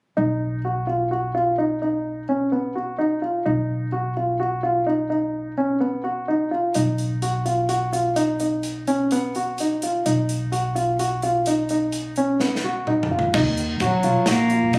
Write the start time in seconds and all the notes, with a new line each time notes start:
0.17 B1 D#4
0.65 F#4
0.87 F4
1.11 F#4
1.35 F4
1.58 D#4
1.82 D#4
2.29 C#4
2.52 B3
2.75 F#4
2.98 D#4
3.22 F4
3.46 B1 D#4
3.92 F#4
4.17 F4
4.40 F#4
4.63 F4
4.87 D#4
5.10 D#4
5.58 C#4
5.80 B3
6.04 F#4
6.28 D#4
6.51 F4
6.74 B1 D#4, closed hi-hat
6.98 closed hi-hat
7.22 F#4, closed hi-hat
7.45 F4, closed hi-hat
7.69 F#4, closed hi-hat
7.93 F4, closed hi-hat
8.16 D#4, closed hi-hat
8.40 D#4, closed hi-hat
8.63 closed hi-hat
8.87 C#4, closed hi-hat
9.11 B3, closed hi-hat
9.35 F#4, closed hi-hat
9.58 D#4, closed hi-hat
9.82 F4, closed hi-hat
10.06 B1 D#4, closed hi-hat
10.29 closed hi-hat
10.52 F#4, closed hi-hat
10.75 F4, closed hi-hat
10.99 F#4, closed hi-hat
11.22 F4, closed hi-hat
11.46 D#4, closed hi-hat
11.69 D#4, closed hi-hat
11.92 closed hi-hat
12.16 C#4, closed hi-hat
12.40 B3, snare
12.55 snare
12.64 F#4
12.87 D#4, mid tom
13.03 mid tom
13.11 F4
13.19 floor tom
13.34 B1 D#4, kick, crash
13.46 D#2
13.57 closed hi-hat
13.80 A#1 F#3 F#4, kick, closed hi-hat
14.03 B1 F4, closed hi-hat
14.26 A#1 A#3 F#4, snare, closed hi-hat
14.50 F4, closed hi-hat
14.63 B2
14.73 D#4, kick, closed hi-hat